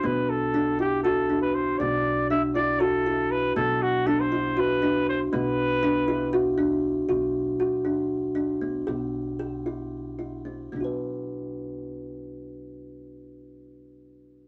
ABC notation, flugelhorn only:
X:1
M:7/8
L:1/16
Q:1/4=119
K:Bphr
V:1 name="Flugelhorn"
B2 A4 G2 A3 B c2 | d4 e2 d2 A4 B2 | A2 F2 A c3 B4 c2 | B8- B2 z4 |
z12 z2 | z12 z2 | z12 z2 | z12 z2 |]